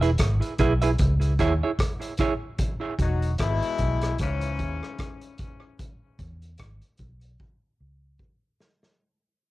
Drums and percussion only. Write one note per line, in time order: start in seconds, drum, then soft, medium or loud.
0.02 closed hi-hat soft
0.18 kick loud
0.18 cross-stick loud
0.18 closed hi-hat medium
0.42 closed hi-hat soft
0.58 kick medium
0.58 closed hi-hat medium
0.82 closed hi-hat medium
0.98 kick loud
0.98 closed hi-hat medium
1.21 closed hi-hat soft
1.39 kick medium
1.39 closed hi-hat medium
1.79 kick loud
1.79 cross-stick loud
1.79 closed hi-hat medium
2.02 closed hi-hat medium
2.17 kick loud
2.17 closed hi-hat medium
2.58 kick loud
2.58 closed hi-hat medium
2.99 kick medium
2.99 closed hi-hat medium
3.22 closed hi-hat soft
3.38 kick loud
3.38 cross-stick loud
3.38 closed hi-hat medium
3.62 closed hi-hat soft
3.78 kick medium
3.78 closed hi-hat medium
4.01 cross-stick medium
4.01 closed hi-hat medium
4.18 kick loud
4.18 closed hi-hat medium
4.41 closed hi-hat medium
4.59 kick medium
4.59 closed hi-hat medium
4.83 cross-stick medium
4.99 kick loud
4.99 cross-stick loud
4.99 closed hi-hat medium
5.21 closed hi-hat soft
5.38 kick loud
5.38 closed hi-hat medium
5.79 kick loud
5.79 closed hi-hat medium
6.19 kick medium
6.19 closed hi-hat medium
6.42 closed hi-hat soft
6.58 kick loud
6.58 cross-stick loud
6.58 closed hi-hat medium
6.82 closed hi-hat soft
6.98 kick medium
6.98 closed hi-hat medium
7.21 closed hi-hat medium
7.40 kick loud
8.19 kick loud
8.60 snare medium
8.83 snare medium